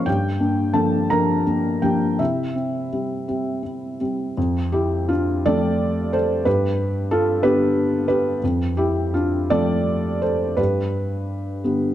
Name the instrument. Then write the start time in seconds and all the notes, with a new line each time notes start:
felt piano
0.06 G2 G4 G5
0.40 A#3 D4
0.74 F3 A#3 D4 A4 A5
1.10 F3 A#3 D4 A#4 A#5
1.47 A#3 D4
1.82 F3 A#3 D4 G4 G5
2.19 C3 E4 E5
2.55 C4
2.92 G3 C4
3.28 G3 C4
3.63 C4
4.01 G3 C4
4.37 F2
4.72 E4 G4
5.09 D4 F4
5.46 F3 A3 C4 A4 D5
6.13 A4 C5
6.45 G2 G4 B4
7.11 F4 A4
7.43 D3 G3 B3 G4 B4
8.08 G4 B4
8.43 F2
8.77 E4 G4
9.14 D4 F4
9.50 F3 A3 C4 A4 D5
10.22 A4 C5
10.57 G2 G4 B4
11.64 D3 G3 B3